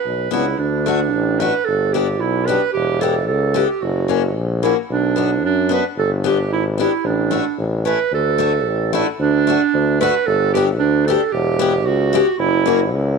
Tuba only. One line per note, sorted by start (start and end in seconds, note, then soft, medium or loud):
0.05 0.30 B1 medium
0.32 0.56 C#2 medium
0.59 1.15 D2 medium
1.13 1.48 A1 loud
1.68 2.23 G1 medium
2.22 2.56 B1 medium
2.75 3.30 E1 medium
3.29 3.64 C#2 loud
3.83 4.38 F#1 loud
4.37 4.72 A#1 medium
4.90 5.45 B1 medium
5.43 5.78 F#2 medium
5.97 6.52 G1 loud
6.50 6.85 G#1 loud
7.04 7.39 A1 loud
7.59 7.94 A1 medium
8.12 8.68 D2 medium
8.66 9.01 A1 medium
9.20 9.55 D2 loud
9.74 10.09 D2 medium
10.27 10.82 G1 loud
10.80 11.15 D2 loud
11.32 11.87 E1 loud
11.86 12.21 C#2 loud
12.39 12.94 F#1 loud
12.92 13.18 C#2 loud